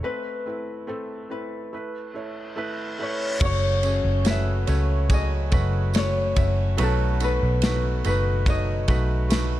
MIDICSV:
0, 0, Header, 1, 7, 480
1, 0, Start_track
1, 0, Tempo, 841515
1, 23, Time_signature, 4, 2, 24, 8
1, 5475, End_track
2, 0, Start_track
2, 0, Title_t, "Harp"
2, 0, Program_c, 0, 46
2, 0, Note_on_c, 0, 75, 75
2, 23, Note_on_c, 0, 71, 83
2, 339, Note_off_c, 0, 75, 0
2, 746, Note_off_c, 0, 71, 0
2, 748, Note_on_c, 0, 71, 67
2, 1727, Note_on_c, 0, 73, 58
2, 1917, Note_off_c, 0, 71, 0
2, 1965, Note_off_c, 0, 73, 0
2, 1967, Note_on_c, 0, 73, 99
2, 2456, Note_on_c, 0, 76, 92
2, 2931, Note_on_c, 0, 75, 82
2, 2965, Note_off_c, 0, 76, 0
2, 3058, Note_off_c, 0, 73, 0
2, 3412, Note_on_c, 0, 73, 93
2, 3895, Note_on_c, 0, 69, 97
2, 3948, Note_off_c, 0, 75, 0
2, 4130, Note_on_c, 0, 71, 82
2, 4502, Note_off_c, 0, 73, 0
2, 4611, Note_off_c, 0, 71, 0
2, 4613, Note_on_c, 0, 71, 76
2, 4847, Note_on_c, 0, 75, 100
2, 5148, Note_off_c, 0, 69, 0
2, 5475, Note_off_c, 0, 71, 0
2, 5475, Note_off_c, 0, 75, 0
2, 5475, End_track
3, 0, Start_track
3, 0, Title_t, "Felt piano"
3, 0, Program_c, 1, 0
3, 0, Control_c, 1, 64, 127
3, 16, Note_on_c, 1, 57, 70
3, 23, Note_on_c, 1, 60, 73
3, 27, Note_on_c, 1, 71, 91
3, 31, Control_c, 1, 64, 0
3, 117, Control_c, 1, 64, 127
3, 247, Note_off_c, 1, 57, 0
3, 250, Note_off_c, 1, 60, 0
3, 252, Note_off_c, 1, 71, 0
3, 261, Note_on_c, 1, 57, 56
3, 266, Note_on_c, 1, 60, 49
3, 272, Note_on_c, 1, 64, 59
3, 488, Note_off_c, 1, 57, 0
3, 491, Note_off_c, 1, 60, 0
3, 494, Note_off_c, 1, 64, 0
3, 497, Note_on_c, 1, 57, 80
3, 502, Note_on_c, 1, 60, 70
3, 508, Note_on_c, 1, 69, 80
3, 727, Note_off_c, 1, 57, 0
3, 729, Note_off_c, 1, 60, 0
3, 732, Note_off_c, 1, 69, 0
3, 739, Note_on_c, 1, 57, 55
3, 742, Note_on_c, 1, 60, 51
3, 745, Note_on_c, 1, 64, 56
3, 968, Note_off_c, 1, 57, 0
3, 969, Note_off_c, 1, 60, 0
3, 971, Note_off_c, 1, 64, 0
3, 986, Note_on_c, 1, 57, 58
3, 986, Note_on_c, 1, 64, 52
3, 988, Control_c, 1, 64, 0
3, 994, Note_on_c, 1, 71, 65
3, 1101, Control_c, 1, 64, 127
3, 1212, Note_off_c, 1, 57, 0
3, 1212, Note_off_c, 1, 64, 0
3, 1216, Note_off_c, 1, 71, 0
3, 1221, Note_on_c, 1, 57, 55
3, 1226, Note_on_c, 1, 64, 52
3, 1232, Note_on_c, 1, 73, 64
3, 1450, Note_off_c, 1, 57, 0
3, 1454, Note_off_c, 1, 64, 0
3, 1457, Note_off_c, 1, 73, 0
3, 1458, Note_on_c, 1, 57, 81
3, 1465, Note_on_c, 1, 64, 77
3, 1470, Note_on_c, 1, 71, 94
3, 1691, Note_off_c, 1, 57, 0
3, 1695, Note_off_c, 1, 64, 0
3, 1697, Note_off_c, 1, 71, 0
3, 1704, Note_on_c, 1, 57, 66
3, 1709, Note_on_c, 1, 64, 59
3, 1715, Note_on_c, 1, 71, 79
3, 1934, Note_off_c, 1, 57, 0
3, 1936, Note_off_c, 1, 64, 0
3, 1939, Note_off_c, 1, 71, 0
3, 1943, Note_on_c, 1, 57, 84
3, 1945, Note_on_c, 1, 61, 81
3, 1947, Note_on_c, 1, 49, 61
3, 1949, Note_on_c, 1, 66, 84
3, 1949, Note_on_c, 1, 73, 105
3, 1953, Control_c, 1, 64, 0
3, 2058, Control_c, 1, 64, 127
3, 2174, Note_off_c, 1, 57, 0
3, 2175, Note_off_c, 1, 61, 0
3, 2176, Note_off_c, 1, 66, 0
3, 2177, Note_off_c, 1, 73, 0
3, 2187, Note_on_c, 1, 57, 58
3, 2190, Note_on_c, 1, 61, 62
3, 2191, Note_on_c, 1, 66, 61
3, 2195, Note_on_c, 1, 68, 65
3, 2415, Note_off_c, 1, 57, 0
3, 2418, Note_off_c, 1, 61, 0
3, 2419, Note_off_c, 1, 66, 0
3, 2421, Note_off_c, 1, 68, 0
3, 2424, Note_on_c, 1, 57, 75
3, 2427, Note_on_c, 1, 61, 72
3, 2432, Note_on_c, 1, 66, 67
3, 2436, Note_on_c, 1, 71, 87
3, 2649, Note_off_c, 1, 49, 0
3, 2656, Note_off_c, 1, 57, 0
3, 2656, Note_off_c, 1, 61, 0
3, 2660, Note_off_c, 1, 66, 0
3, 2662, Note_off_c, 1, 71, 0
3, 2664, Note_on_c, 1, 61, 76
3, 2665, Note_on_c, 1, 57, 92
3, 2671, Note_on_c, 1, 66, 69
3, 2675, Note_on_c, 1, 73, 91
3, 2895, Note_off_c, 1, 57, 0
3, 2895, Note_off_c, 1, 61, 0
3, 2899, Note_off_c, 1, 66, 0
3, 2902, Note_off_c, 1, 73, 0
3, 2903, Note_on_c, 1, 57, 74
3, 2904, Note_on_c, 1, 61, 62
3, 2908, Note_on_c, 1, 66, 62
3, 2913, Note_on_c, 1, 68, 83
3, 3134, Note_off_c, 1, 57, 0
3, 3137, Note_off_c, 1, 61, 0
3, 3139, Note_off_c, 1, 66, 0
3, 3142, Note_off_c, 1, 68, 0
3, 3143, Note_on_c, 1, 57, 83
3, 3148, Note_on_c, 1, 61, 78
3, 3151, Note_on_c, 1, 66, 85
3, 3156, Note_on_c, 1, 71, 98
3, 3377, Note_off_c, 1, 57, 0
3, 3379, Note_off_c, 1, 61, 0
3, 3381, Note_off_c, 1, 66, 0
3, 3383, Note_off_c, 1, 71, 0
3, 3388, Note_on_c, 1, 57, 73
3, 3388, Note_on_c, 1, 61, 59
3, 3393, Note_on_c, 1, 66, 70
3, 3396, Note_on_c, 1, 73, 81
3, 3617, Note_off_c, 1, 57, 0
3, 3620, Note_off_c, 1, 61, 0
3, 3622, Note_off_c, 1, 66, 0
3, 3624, Note_off_c, 1, 73, 0
3, 3626, Note_on_c, 1, 57, 66
3, 3631, Note_on_c, 1, 61, 64
3, 3632, Note_on_c, 1, 66, 66
3, 3637, Note_on_c, 1, 76, 81
3, 3855, Note_off_c, 1, 57, 0
3, 3861, Note_off_c, 1, 61, 0
3, 3861, Note_off_c, 1, 66, 0
3, 3863, Note_on_c, 1, 57, 102
3, 3864, Note_off_c, 1, 76, 0
3, 3866, Note_on_c, 1, 63, 88
3, 3867, Note_on_c, 1, 47, 66
3, 3867, Note_on_c, 1, 54, 69
3, 3870, Note_on_c, 1, 66, 85
3, 3873, Note_on_c, 1, 71, 101
3, 3882, Control_c, 1, 64, 0
3, 3968, Control_c, 1, 64, 127
3, 4097, Note_off_c, 1, 57, 0
3, 4098, Note_off_c, 1, 63, 0
3, 4101, Note_off_c, 1, 66, 0
3, 4102, Note_off_c, 1, 71, 0
3, 4106, Note_on_c, 1, 57, 66
3, 4110, Note_on_c, 1, 63, 62
3, 4114, Note_on_c, 1, 66, 67
3, 4117, Note_on_c, 1, 69, 70
3, 4338, Note_off_c, 1, 57, 0
3, 4340, Note_off_c, 1, 63, 0
3, 4342, Note_off_c, 1, 66, 0
3, 4343, Note_off_c, 1, 69, 0
3, 4352, Note_on_c, 1, 57, 76
3, 4357, Note_on_c, 1, 63, 72
3, 4358, Note_on_c, 1, 66, 76
3, 4365, Note_on_c, 1, 71, 83
3, 4565, Note_off_c, 1, 54, 0
3, 4566, Note_off_c, 1, 47, 0
3, 4580, Note_off_c, 1, 57, 0
3, 4582, Note_off_c, 1, 63, 0
3, 4583, Note_off_c, 1, 66, 0
3, 4586, Note_off_c, 1, 71, 0
3, 4589, Note_on_c, 1, 57, 88
3, 4593, Note_on_c, 1, 63, 82
3, 4594, Note_on_c, 1, 66, 80
3, 4598, Note_on_c, 1, 71, 97
3, 4817, Note_off_c, 1, 57, 0
3, 4819, Note_off_c, 1, 63, 0
3, 4819, Note_off_c, 1, 66, 0
3, 4821, Note_off_c, 1, 71, 0
3, 4830, Note_on_c, 1, 57, 74
3, 4833, Note_on_c, 1, 63, 66
3, 4833, Note_on_c, 1, 66, 70
3, 4839, Note_on_c, 1, 73, 85
3, 5055, Note_off_c, 1, 57, 0
3, 5058, Note_off_c, 1, 63, 0
3, 5058, Note_off_c, 1, 66, 0
3, 5060, Note_off_c, 1, 73, 0
3, 5064, Note_on_c, 1, 57, 99
3, 5068, Note_on_c, 1, 63, 77
3, 5069, Note_on_c, 1, 66, 86
3, 5074, Note_on_c, 1, 71, 97
3, 5290, Note_off_c, 1, 57, 0
3, 5293, Note_off_c, 1, 63, 0
3, 5294, Note_off_c, 1, 66, 0
3, 5296, Note_off_c, 1, 71, 0
3, 5299, Note_on_c, 1, 57, 82
3, 5302, Note_on_c, 1, 63, 62
3, 5307, Note_on_c, 1, 66, 71
3, 5309, Note_on_c, 1, 71, 75
3, 5475, Note_off_c, 1, 57, 0
3, 5475, Note_off_c, 1, 63, 0
3, 5475, Note_off_c, 1, 66, 0
3, 5475, Note_off_c, 1, 71, 0
3, 5475, End_track
4, 0, Start_track
4, 0, Title_t, "Steel-string acoustic guitar"
4, 0, Program_c, 2, 25
4, 1939, Note_on_c, 2, 42, 80
4, 1942, Note_on_c, 2, 66, 67
4, 2184, Note_on_c, 2, 61, 62
4, 2422, Note_off_c, 2, 66, 0
4, 2424, Note_on_c, 2, 66, 73
4, 2661, Note_off_c, 2, 61, 0
4, 2668, Note_on_c, 2, 61, 57
4, 2907, Note_on_c, 2, 54, 63
4, 3146, Note_off_c, 2, 66, 0
4, 3148, Note_on_c, 2, 66, 62
4, 3388, Note_on_c, 2, 57, 61
4, 3626, Note_off_c, 2, 66, 0
4, 3629, Note_on_c, 2, 66, 76
4, 3868, Note_on_c, 2, 47, 89
4, 3870, Note_off_c, 2, 66, 0
4, 3872, Note_off_c, 2, 42, 0
4, 3872, Note_on_c, 2, 66, 64
4, 3922, Note_off_c, 2, 61, 0
4, 4110, Note_on_c, 2, 63, 62
4, 4127, Note_off_c, 2, 57, 0
4, 4346, Note_off_c, 2, 66, 0
4, 4353, Note_on_c, 2, 66, 71
4, 4585, Note_off_c, 2, 63, 0
4, 4592, Note_on_c, 2, 63, 57
4, 4827, Note_off_c, 2, 54, 0
4, 4829, Note_on_c, 2, 54, 70
4, 5063, Note_off_c, 2, 66, 0
4, 5070, Note_on_c, 2, 66, 63
4, 5305, Note_on_c, 2, 57, 64
4, 5475, Note_off_c, 2, 47, 0
4, 5475, Note_off_c, 2, 54, 0
4, 5475, Note_off_c, 2, 57, 0
4, 5475, Note_off_c, 2, 63, 0
4, 5475, Note_off_c, 2, 66, 0
4, 5475, End_track
5, 0, Start_track
5, 0, Title_t, "Fingered electric bass"
5, 0, Program_c, 3, 33
5, 1944, Note_on_c, 3, 30, 91
5, 2284, Note_off_c, 3, 30, 0
5, 2306, Note_on_c, 3, 30, 104
5, 2647, Note_off_c, 3, 30, 0
5, 2669, Note_on_c, 3, 37, 94
5, 3152, Note_on_c, 3, 30, 90
5, 3161, Note_off_c, 3, 37, 0
5, 3612, Note_off_c, 3, 30, 0
5, 3633, Note_on_c, 3, 30, 89
5, 3858, Note_off_c, 3, 30, 0
5, 3876, Note_on_c, 3, 35, 92
5, 4212, Note_off_c, 3, 35, 0
5, 4237, Note_on_c, 3, 35, 98
5, 4571, Note_off_c, 3, 35, 0
5, 4594, Note_on_c, 3, 30, 97
5, 5046, Note_off_c, 3, 30, 0
5, 5068, Note_on_c, 3, 35, 100
5, 5475, Note_off_c, 3, 35, 0
5, 5475, End_track
6, 0, Start_track
6, 0, Title_t, "Reverse cymbal"
6, 0, Program_c, 4, 119
6, 979, Note_on_c, 4, 60, 71
6, 1946, Note_off_c, 4, 60, 0
6, 5475, End_track
7, 0, Start_track
7, 0, Title_t, "Drums"
7, 1944, Note_on_c, 9, 49, 97
7, 1945, Note_on_c, 9, 36, 127
7, 2001, Note_off_c, 9, 49, 0
7, 2002, Note_off_c, 9, 36, 0
7, 2184, Note_on_c, 9, 51, 49
7, 2185, Note_on_c, 9, 54, 47
7, 2241, Note_off_c, 9, 51, 0
7, 2242, Note_off_c, 9, 54, 0
7, 2422, Note_on_c, 9, 51, 66
7, 2428, Note_on_c, 9, 54, 77
7, 2433, Note_on_c, 9, 38, 106
7, 2480, Note_off_c, 9, 51, 0
7, 2485, Note_off_c, 9, 54, 0
7, 2490, Note_off_c, 9, 38, 0
7, 2666, Note_on_c, 9, 51, 52
7, 2669, Note_on_c, 9, 54, 47
7, 2723, Note_off_c, 9, 51, 0
7, 2726, Note_off_c, 9, 54, 0
7, 2908, Note_on_c, 9, 36, 95
7, 2908, Note_on_c, 9, 51, 62
7, 2908, Note_on_c, 9, 54, 56
7, 2965, Note_off_c, 9, 36, 0
7, 2965, Note_off_c, 9, 51, 0
7, 2965, Note_off_c, 9, 54, 0
7, 3146, Note_on_c, 9, 51, 56
7, 3150, Note_on_c, 9, 36, 81
7, 3152, Note_on_c, 9, 54, 41
7, 3203, Note_off_c, 9, 51, 0
7, 3208, Note_off_c, 9, 36, 0
7, 3209, Note_off_c, 9, 54, 0
7, 3386, Note_on_c, 9, 54, 70
7, 3392, Note_on_c, 9, 51, 82
7, 3399, Note_on_c, 9, 38, 99
7, 3443, Note_off_c, 9, 54, 0
7, 3449, Note_off_c, 9, 51, 0
7, 3456, Note_off_c, 9, 38, 0
7, 3630, Note_on_c, 9, 51, 68
7, 3631, Note_on_c, 9, 36, 84
7, 3632, Note_on_c, 9, 54, 31
7, 3687, Note_off_c, 9, 51, 0
7, 3688, Note_off_c, 9, 36, 0
7, 3689, Note_off_c, 9, 54, 0
7, 3869, Note_on_c, 9, 51, 86
7, 3879, Note_on_c, 9, 54, 30
7, 3926, Note_off_c, 9, 51, 0
7, 3936, Note_off_c, 9, 54, 0
7, 4109, Note_on_c, 9, 51, 56
7, 4109, Note_on_c, 9, 54, 47
7, 4166, Note_off_c, 9, 51, 0
7, 4166, Note_off_c, 9, 54, 0
7, 4345, Note_on_c, 9, 51, 71
7, 4355, Note_on_c, 9, 38, 101
7, 4356, Note_on_c, 9, 54, 85
7, 4402, Note_off_c, 9, 51, 0
7, 4412, Note_off_c, 9, 38, 0
7, 4413, Note_off_c, 9, 54, 0
7, 4589, Note_on_c, 9, 51, 56
7, 4596, Note_on_c, 9, 54, 53
7, 4646, Note_off_c, 9, 51, 0
7, 4653, Note_off_c, 9, 54, 0
7, 4827, Note_on_c, 9, 36, 93
7, 4830, Note_on_c, 9, 51, 59
7, 4837, Note_on_c, 9, 54, 58
7, 4885, Note_off_c, 9, 36, 0
7, 4887, Note_off_c, 9, 51, 0
7, 4894, Note_off_c, 9, 54, 0
7, 5064, Note_on_c, 9, 51, 54
7, 5068, Note_on_c, 9, 36, 86
7, 5075, Note_on_c, 9, 54, 37
7, 5121, Note_off_c, 9, 51, 0
7, 5125, Note_off_c, 9, 36, 0
7, 5132, Note_off_c, 9, 54, 0
7, 5307, Note_on_c, 9, 51, 74
7, 5307, Note_on_c, 9, 54, 76
7, 5315, Note_on_c, 9, 38, 105
7, 5364, Note_off_c, 9, 51, 0
7, 5364, Note_off_c, 9, 54, 0
7, 5372, Note_off_c, 9, 38, 0
7, 5475, End_track
0, 0, End_of_file